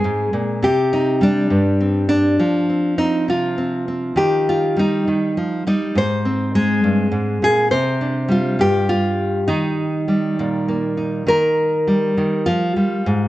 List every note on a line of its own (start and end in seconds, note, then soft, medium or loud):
0.00 0.59 G#3 medium
0.00 1.26 C4 soft
0.00 0.63 G#4 medium
0.04 0.33 G#2 medium
0.33 0.63 A#2 medium
0.63 1.50 C3 medium
0.63 1.51 G4 loud
0.93 1.22 D#4 medium
1.21 2.35 G3 medium
1.21 2.08 D4 medium
1.50 2.39 G2 medium
1.81 2.36 C4 medium
2.09 2.98 D4 loud
2.39 4.76 F3 medium
2.69 2.97 C4 soft
2.98 3.57 C4 medium
2.98 3.28 D#4 medium
3.28 4.15 C3 medium
3.28 4.18 F4 medium
3.58 3.87 C4 soft
3.88 4.14 C4 soft
4.16 5.06 D#3 medium
4.16 5.07 G4 medium
4.49 4.78 F4 medium
4.76 5.37 G3 medium
4.76 5.66 D#4 medium
5.08 5.37 D#3 medium
5.37 5.66 F3 medium
5.67 5.96 G3 medium
5.67 5.96 D#4 medium
5.95 6.83 G#2 medium
5.95 6.55 C5 loud
6.25 7.68 C4 soft
6.55 7.68 G#3 medium
6.55 7.42 G#4 medium
6.84 7.11 G2 medium
7.12 7.41 G#2 medium
7.42 7.71 A#2 medium
7.42 7.71 G#4 loud
7.71 8.59 C3 medium
7.71 8.59 C5 loud
8.01 9.45 D4 soft
8.28 10.07 G3 medium
8.28 8.88 F4 medium
8.59 9.48 G2 medium
8.59 9.49 G4 medium
8.89 9.47 F4 medium
9.48 11.24 D#3 medium
9.48 10.96 D#4 medium
10.08 11.24 G3 medium
10.39 11.25 A#2 medium
10.68 13.06 A#3 soft
10.97 11.24 D#4 soft
11.27 12.16 D#3 medium
11.27 13.05 A#4 loud
11.87 12.46 G3 medium
12.17 12.47 D#3 medium
12.46 12.76 F3 medium
12.46 13.28 F4 medium
12.76 13.05 G3 medium
13.06 13.28 G#2 medium